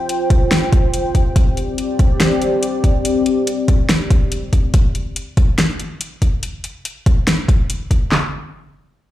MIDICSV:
0, 0, Header, 1, 3, 480
1, 0, Start_track
1, 0, Tempo, 422535
1, 1543, Time_signature, 4, 2, 24, 8
1, 10350, End_track
2, 0, Start_track
2, 0, Title_t, "Analog synth pad"
2, 0, Program_c, 0, 89
2, 0, Note_on_c, 0, 65, 80
2, 0, Note_on_c, 0, 72, 68
2, 0, Note_on_c, 0, 79, 85
2, 1499, Note_off_c, 0, 72, 0
2, 1500, Note_off_c, 0, 65, 0
2, 1500, Note_off_c, 0, 79, 0
2, 1541, Note_on_c, 0, 60, 75
2, 1541, Note_on_c, 0, 67, 73
2, 1542, Note_on_c, 0, 74, 84
2, 5343, Note_off_c, 0, 60, 0
2, 5344, Note_off_c, 0, 67, 0
2, 5344, Note_off_c, 0, 74, 0
2, 10350, End_track
3, 0, Start_track
3, 0, Title_t, "Drums"
3, 105, Note_on_c, 9, 42, 73
3, 219, Note_off_c, 9, 42, 0
3, 344, Note_on_c, 9, 36, 102
3, 344, Note_on_c, 9, 42, 49
3, 457, Note_off_c, 9, 36, 0
3, 458, Note_off_c, 9, 42, 0
3, 584, Note_on_c, 9, 38, 115
3, 584, Note_on_c, 9, 42, 75
3, 698, Note_off_c, 9, 38, 0
3, 698, Note_off_c, 9, 42, 0
3, 824, Note_on_c, 9, 36, 108
3, 824, Note_on_c, 9, 42, 48
3, 937, Note_off_c, 9, 36, 0
3, 937, Note_off_c, 9, 42, 0
3, 1063, Note_on_c, 9, 42, 75
3, 1176, Note_off_c, 9, 42, 0
3, 1304, Note_on_c, 9, 36, 56
3, 1304, Note_on_c, 9, 42, 46
3, 1417, Note_off_c, 9, 36, 0
3, 1418, Note_off_c, 9, 42, 0
3, 1543, Note_on_c, 9, 36, 108
3, 1544, Note_on_c, 9, 42, 77
3, 1657, Note_off_c, 9, 36, 0
3, 1658, Note_off_c, 9, 42, 0
3, 1786, Note_on_c, 9, 42, 47
3, 1899, Note_off_c, 9, 42, 0
3, 2023, Note_on_c, 9, 42, 73
3, 2137, Note_off_c, 9, 42, 0
3, 2264, Note_on_c, 9, 36, 97
3, 2264, Note_on_c, 9, 42, 50
3, 2377, Note_off_c, 9, 42, 0
3, 2378, Note_off_c, 9, 36, 0
3, 2503, Note_on_c, 9, 38, 114
3, 2503, Note_on_c, 9, 42, 73
3, 2617, Note_off_c, 9, 38, 0
3, 2617, Note_off_c, 9, 42, 0
3, 2744, Note_on_c, 9, 42, 47
3, 2858, Note_off_c, 9, 42, 0
3, 2983, Note_on_c, 9, 42, 75
3, 3097, Note_off_c, 9, 42, 0
3, 3224, Note_on_c, 9, 36, 59
3, 3225, Note_on_c, 9, 42, 47
3, 3338, Note_off_c, 9, 36, 0
3, 3338, Note_off_c, 9, 42, 0
3, 3464, Note_on_c, 9, 42, 75
3, 3577, Note_off_c, 9, 42, 0
3, 3703, Note_on_c, 9, 42, 50
3, 3817, Note_off_c, 9, 42, 0
3, 3944, Note_on_c, 9, 42, 76
3, 4057, Note_off_c, 9, 42, 0
3, 4183, Note_on_c, 9, 42, 53
3, 4184, Note_on_c, 9, 36, 100
3, 4297, Note_off_c, 9, 36, 0
3, 4297, Note_off_c, 9, 42, 0
3, 4422, Note_on_c, 9, 38, 107
3, 4422, Note_on_c, 9, 42, 76
3, 4536, Note_off_c, 9, 38, 0
3, 4536, Note_off_c, 9, 42, 0
3, 4663, Note_on_c, 9, 36, 95
3, 4663, Note_on_c, 9, 42, 49
3, 4777, Note_off_c, 9, 36, 0
3, 4777, Note_off_c, 9, 42, 0
3, 4904, Note_on_c, 9, 42, 80
3, 5017, Note_off_c, 9, 42, 0
3, 5143, Note_on_c, 9, 36, 55
3, 5143, Note_on_c, 9, 42, 47
3, 5256, Note_off_c, 9, 42, 0
3, 5257, Note_off_c, 9, 36, 0
3, 5381, Note_on_c, 9, 42, 78
3, 5383, Note_on_c, 9, 36, 108
3, 5495, Note_off_c, 9, 42, 0
3, 5497, Note_off_c, 9, 36, 0
3, 5622, Note_on_c, 9, 42, 51
3, 5736, Note_off_c, 9, 42, 0
3, 5863, Note_on_c, 9, 42, 74
3, 5976, Note_off_c, 9, 42, 0
3, 6103, Note_on_c, 9, 36, 94
3, 6103, Note_on_c, 9, 42, 50
3, 6216, Note_off_c, 9, 36, 0
3, 6216, Note_off_c, 9, 42, 0
3, 6344, Note_on_c, 9, 38, 112
3, 6344, Note_on_c, 9, 42, 74
3, 6457, Note_off_c, 9, 38, 0
3, 6457, Note_off_c, 9, 42, 0
3, 6584, Note_on_c, 9, 42, 51
3, 6697, Note_off_c, 9, 42, 0
3, 6824, Note_on_c, 9, 42, 82
3, 6937, Note_off_c, 9, 42, 0
3, 7063, Note_on_c, 9, 36, 51
3, 7063, Note_on_c, 9, 42, 51
3, 7177, Note_off_c, 9, 36, 0
3, 7177, Note_off_c, 9, 42, 0
3, 7302, Note_on_c, 9, 42, 79
3, 7416, Note_off_c, 9, 42, 0
3, 7542, Note_on_c, 9, 42, 53
3, 7656, Note_off_c, 9, 42, 0
3, 7783, Note_on_c, 9, 42, 79
3, 7897, Note_off_c, 9, 42, 0
3, 8023, Note_on_c, 9, 36, 91
3, 8024, Note_on_c, 9, 42, 54
3, 8137, Note_off_c, 9, 36, 0
3, 8137, Note_off_c, 9, 42, 0
3, 8264, Note_on_c, 9, 38, 108
3, 8264, Note_on_c, 9, 42, 76
3, 8378, Note_off_c, 9, 38, 0
3, 8378, Note_off_c, 9, 42, 0
3, 8503, Note_on_c, 9, 36, 102
3, 8506, Note_on_c, 9, 42, 53
3, 8617, Note_off_c, 9, 36, 0
3, 8619, Note_off_c, 9, 42, 0
3, 8743, Note_on_c, 9, 42, 76
3, 8857, Note_off_c, 9, 42, 0
3, 8982, Note_on_c, 9, 36, 55
3, 8984, Note_on_c, 9, 42, 53
3, 9096, Note_off_c, 9, 36, 0
3, 9098, Note_off_c, 9, 42, 0
3, 9222, Note_on_c, 9, 38, 101
3, 9222, Note_on_c, 9, 39, 82
3, 9336, Note_off_c, 9, 38, 0
3, 9336, Note_off_c, 9, 39, 0
3, 10350, End_track
0, 0, End_of_file